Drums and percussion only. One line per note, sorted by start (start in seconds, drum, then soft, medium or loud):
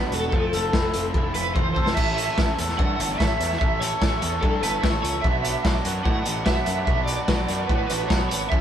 0.12 closed hi-hat medium
0.32 kick loud
0.53 closed hi-hat medium
0.73 kick loud
0.73 snare loud
0.94 closed hi-hat medium
1.14 kick loud
1.34 closed hi-hat medium
1.55 kick loud
1.55 high tom medium
1.76 kick medium
1.86 snare medium
1.97 kick loud
1.97 crash loud
2.18 closed hi-hat medium
2.38 kick loud
2.38 snare loud
2.59 closed hi-hat medium
2.69 snare soft
2.79 kick loud
3.00 closed hi-hat medium
3.20 kick loud
3.20 snare loud
3.41 closed hi-hat loud
3.52 snare soft
3.61 kick loud
3.82 closed hi-hat medium
4.02 kick loud
4.02 snare loud
4.22 closed hi-hat loud
4.43 kick loud
4.63 closed hi-hat medium
4.84 kick loud
4.84 snare loud
5.05 closed hi-hat loud
5.24 kick loud
5.45 closed hi-hat medium
5.65 kick loud
5.65 snare loud
5.85 closed hi-hat medium
6.05 kick loud
6.25 closed hi-hat medium
6.46 kick loud
6.46 snare loud
6.66 closed hi-hat medium
6.87 kick loud
7.07 closed hi-hat medium
7.28 kick loud
7.28 snare loud
7.48 closed hi-hat medium
7.69 kick loud
7.90 closed hi-hat medium
8.10 kick loud
8.10 snare loud
8.31 closed hi-hat loud
8.52 kick loud